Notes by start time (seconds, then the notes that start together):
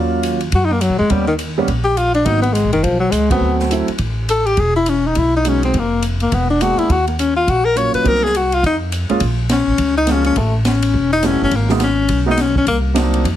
Already playing: D#2 F#3 A#3 C#4 F4
0.23 hi-hat pedal, ride
0.41 ride
0.52 F#2 F#4, kick, ride
0.65 D#4
0.72 A#3
0.81 F#3, hi-hat pedal, ride
0.89 A#2
0.98 F2 G#3
1.10 D#2 G3 A#3 B3 C#4, kick, ride
1.27 D#3
1.39 hi-hat pedal, ride
1.58 G3 A#3 B3 C#4
1.68 A#1, kick, ride
1.84 G4
1.97 F4, hi-hat pedal, ride
2.14 D4, ride
2.25 G#1 F#3 A#3 B3 D#4, kick, ride
2.42 B3, ride
2.53 G#3, hi-hat pedal, ride
2.63 A#1
2.73 F#1 D#3, ride
2.83 B1 F3, kick, ride
3.00 F#3
3.11 C#2 G#3, hi-hat pedal, ride
3.30 F#3 A3 B3 C4 F#4, kick, ride
3.40 D2
3.60 snare
3.70 F#3 A3 C4 E4, hi-hat pedal, ride
3.88 muted upright bass stroke, ride
3.98 A1, kick, ride
4.29 A4, hi-hat pedal, ride
4.46 G4, ride
4.57 E1 G#4, kick, ride
4.76 E4
4.86 C#4, hi-hat pedal, ride
5.07 D#4
5.15 B1 E4, kick, ride
5.36 D#4
5.45 F#3 G#3 B3 C#4 D#4, hi-hat pedal, ride
5.63 C4, ride
5.74 F1, kick, ride
5.78 A#3
6.02 hi-hat pedal, ride
6.20 A#3, ride
6.32 E1 B3, kick, ride
6.50 D4
6.61 G#3 A#3 B3 D4 F#4, hi-hat pedal, ride
6.77 E4, muted upright bass stroke, ride
6.89 D#2 F#4, kick, ride
7.07 A#3, ride
7.19 C#4, hi-hat pedal, ride
7.36 F4
7.47 A#1 F#4, kick, ride
7.65 A#4
7.75 F#3 A#3 C#4 F4 C#5, hi-hat pedal, ride
7.94 B4, muted upright bass stroke, ride
8.04 C2 F#3 A#3 C4 D#4 A#4, kick, ride
8.15 snare
8.23 G#4, snare
8.34 F#4, hi-hat pedal, ride
8.52 F4, ride
8.63 F2 D#4, kick, ride
8.92 hi-hat pedal, ride
9.09 G#3 A#3 C#4 F4, muted upright bass stroke, ride
9.20 A#1, kick, ride
9.49 C#4, snare, hi-hat pedal, ride
9.67 A1
9.78 C#2, kick, ride
9.98 D#4
10.07 F3 G#3 A#3 C#4 F4, snare, hi-hat pedal, ride
10.11 C#4
10.24 C#4, ride
10.36 A1 A3, kick, ride
10.65 C#4, snare, hi-hat pedal, ride
10.82 ride
10.94 E1, kick
11.13 D#4
11.23 G3 A3 B3 C#4 E4, snare, hi-hat pedal, ride
11.41 G1 C#4
11.51 G#1, kick, ride
11.56 A#3
11.69 F#3 G#3 A#3 B3 D#4, snare
11.80 C#4, snare, hi-hat pedal, ride
12.09 B1, kick, ride
12.26 F#3 G#3 A#3 B3 D#4
12.31 D#4
12.37 C#4, snare, hi-hat pedal, ride
12.55 C#4, kick
12.66 C2 A#3, kick, ride
12.94 F#3 A#3 C4 D4 D#4, snare, hi-hat pedal, ride
13.14 ride
13.24 F2, kick, ride